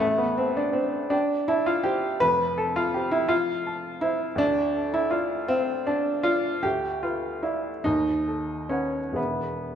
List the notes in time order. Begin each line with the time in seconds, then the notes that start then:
0.00 A1 A3
0.18 B3
0.38 C4 A4
0.57 D4
0.73 C4 C5
1.10 D4 G5
1.48 E4 A5
1.66 F4
1.84 G4 C5
2.20 F1 F2 B4
2.58 A4
2.76 F4
2.94 G4 C5
3.11 E4
3.28 F4 F5
3.67 A5
4.01 E4 C5
4.35 D2 D4
4.76 A4
4.94 E4
5.11 F4 D5
5.48 C4 F5
5.87 D4 A5
6.23 F4 D5
6.63 D2 G4
7.03 F4 B4
7.43 E4 D5 F5
7.84 D#2 D#4
8.28 A4
8.69 C#4 B4 F#5
9.12 E2 G#4 B4 E5
9.16 E1 B3